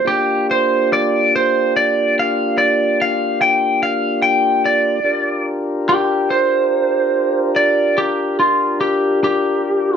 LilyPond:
<<
  \new Staff \with { instrumentName = "Lead electric guitar" } { \time 12/8 \key g \dorian \tempo 4. = 48 g'8 c''8 d''8 c''8 d''8 f''8 d''8 f''8 g''8 f''8 g''8 d''8~ | d''8 r8 g'8 c''4. d''8 g'8 f'8 g'8 g'4 | }
  \new Staff \with { instrumentName = "Tonewheel organ" } { \time 12/8 \key g \dorian <bes d' f' g'>1. | <d' f' g' bes'>1. | }
>>